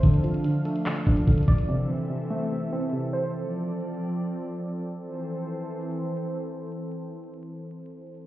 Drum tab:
HH |x-x-x-x-x---x-x-x-x-x-x-xxxxx-x-|--------------------------------|--------------------------------|--------------------------------|
CP |----------------x---------------|--------------------------------|--------------------------------|--------------------------------|
BD |o-------------------o---o---o---|--------------------------------|--------------------------------|--------------------------------|

HH |--------------------------------|
CP |--------------------------------|
BD |--------------------------------|